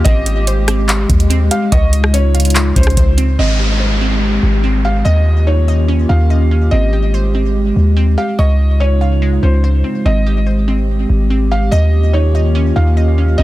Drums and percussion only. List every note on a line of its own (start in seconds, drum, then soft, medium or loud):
0.05 kick loud
0.05 closed hi-hat medium
0.26 closed hi-hat medium
0.47 closed hi-hat medium
0.68 cross-stick loud
0.68 closed hi-hat medium
0.89 clap loud
0.89 closed hi-hat medium
1.09 kick medium
1.09 closed hi-hat medium
1.20 closed hi-hat medium
1.30 closed hi-hat medium
1.51 closed hi-hat medium
1.72 kick loud
1.72 closed hi-hat medium
1.93 closed hi-hat medium
2.04 cross-stick loud
2.14 closed hi-hat medium
2.35 closed hi-hat soft
2.40 closed hi-hat medium
2.45 closed hi-hat medium
2.50 closed hi-hat medium
2.55 clap loud
2.55 closed hi-hat medium
2.76 kick loud
2.76 closed hi-hat medium
2.83 cross-stick loud
2.83 closed hi-hat medium
2.90 closed hi-hat soft
2.97 kick loud
2.97 closed hi-hat medium
3.18 closed hi-hat medium